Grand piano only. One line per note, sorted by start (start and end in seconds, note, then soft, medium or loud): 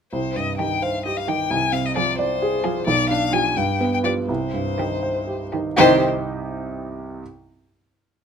0.13 1.47 C2 soft
0.36 0.73 G2 soft
0.59 0.96 D#4 soft
0.82 1.19 C5 soft
1.06 1.42 G4 soft
1.27 1.51 D#4 soft
1.51 2.84 C2 medium
1.72 2.10 C3 soft
1.97 2.33 F4 soft
2.19 2.55 D5 medium
2.42 2.79 G#4 soft
2.64 2.87 F4 medium
2.87 3.54 B1 medium
3.11 3.48 D4 soft
3.33 3.54 F4 soft
3.33 3.54 G4 soft
3.57 4.26 G2 medium
3.80 4.19 B3 soft
4.04 4.26 F4 soft
4.04 4.26 G4 soft
4.29 5.73 C2 medium
4.54 4.94 G2 soft
4.79 5.18 D#4 soft
5.02 5.43 C5 soft
5.27 5.67 G4 soft
5.53 5.77 D#4 soft
5.78 6.04 C2 medium
5.78 6.04 C3 medium
5.78 6.04 C4 medium
5.78 6.04 D#4 medium
5.78 6.04 G4 medium
5.78 6.04 D#5 medium